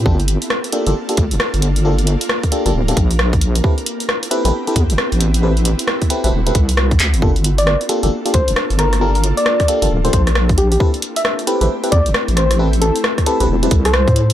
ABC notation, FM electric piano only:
X:1
M:4/4
L:1/16
Q:"Swing 16ths" 1/4=134
K:Gdor
V:1 name="FM electric piano"
[B,DFGA] z4 z [B,DFGA] [B,DFGA] z [B,DFGA] z6 | [B,DFGA] z4 z [B,DFGA] [B,DFGA] z [B,DFGA] z6 | [CEGA=B] z4 z [CEGAB] [CEGAB] z [CEGAB] z6 | [CEGA=B] z4 z [CEGAB] [CEGAB] z [CEGAB] z6 |
[B,DFGA] z4 z [B,DFGA] [B,DFGA] z [B,DFGA] z6 | [B,DFGA] z4 z [B,DFGA] [B,DFGA] z [B,DFGA] z6 | [CEGA=B] z4 z [CEGAB] [CEGAB] z [CEGAB] z6 | [CEGA=B] z4 z [CEGAB] [CEGAB] z [CEGAB] z6 |]